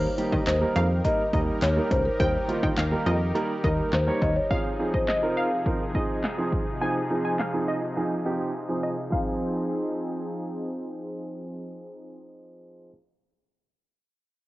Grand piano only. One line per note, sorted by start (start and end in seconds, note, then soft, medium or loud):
0.18 0.42 G3 medium
0.18 0.42 A#3 medium
0.18 0.42 D#4 medium
0.18 0.42 G4 medium
0.61 0.85 G3 medium
0.61 0.85 A#3 medium
0.61 0.85 D#4 medium
0.61 0.85 A#4 medium
1.04 1.20 G3 medium
1.04 1.21 A#3 medium
1.04 1.21 D#4 medium
1.04 1.21 A#4 medium
1.33 1.57 G3 medium
1.33 1.57 A#3 medium
1.33 1.58 D#4 medium
1.33 1.58 A#4 medium
1.76 2.01 G3 medium
1.76 2.01 A#3 medium
1.76 2.01 D#4 medium
1.76 2.01 A#4 medium
2.20 2.36 G3 medium
2.20 2.36 A#3 medium
2.20 2.36 D#4 medium
2.20 2.36 A#4 medium
2.48 2.73 G3 medium
2.48 2.73 A#3 medium
2.48 2.73 D#4 medium
2.48 2.73 F4 medium
2.92 3.16 G3 medium
2.92 3.16 A#3 medium
2.92 3.16 D#4 medium
2.92 3.16 A#4 medium
3.35 3.51 G3 medium
3.35 3.51 A#3 medium
3.35 3.51 D#4 medium
3.35 3.51 A#4 medium
3.64 3.88 G3 medium
3.64 3.88 A#3 medium
3.64 3.88 D#4 medium
3.64 3.88 A#4 medium
4.07 4.31 G3 medium
4.07 4.31 A#3 medium
4.07 4.31 D#4 medium
4.07 4.32 C#5 medium
4.50 4.67 F3 medium
4.50 4.67 C4 medium
4.50 4.67 D#4 medium
4.50 4.67 G#4 medium
4.79 5.03 F3 medium
4.79 5.04 C4 medium
4.79 5.04 D#4 medium
4.79 5.04 G#4 medium
5.22 5.47 F3 medium
5.22 5.47 C4 medium
5.22 5.47 D#4 medium
5.22 5.47 A#4 medium
5.66 5.82 F3 medium
5.66 5.82 C4 medium
5.66 5.82 D#4 medium
5.66 5.82 A#4 medium
5.95 6.19 F3 medium
5.95 6.19 C4 medium
5.95 6.19 D#4 medium
5.95 6.19 G#4 medium
6.38 6.62 F3 medium
6.38 6.62 C4 medium
6.38 6.62 D#4 medium
6.38 6.62 G#4 medium
6.81 6.97 F3 medium
6.81 6.97 C4 medium
6.81 6.98 D#4 medium
6.81 6.98 G#4 medium
7.10 7.34 F3 medium
7.10 7.34 C4 medium
7.10 7.34 D#4 medium
7.10 7.35 G#4 medium
7.53 7.78 F3 medium
7.53 7.78 C4 medium
7.53 7.78 D#4 medium
7.53 7.78 G#4 medium
7.97 8.13 F3 medium
7.97 8.13 C4 medium
7.97 8.13 D#4 medium
7.97 8.13 G#4 medium
8.26 8.50 F3 medium
8.26 8.50 C4 medium
8.26 8.50 D#4 medium
8.26 8.50 G4 medium
8.69 8.93 F3 medium
8.69 8.93 C4 medium
8.69 8.93 D#4 medium
8.69 8.93 G#4 medium
9.10 12.88 F3 medium
9.10 12.89 C4 medium
9.10 12.89 D#4 medium
9.10 12.90 G#4 medium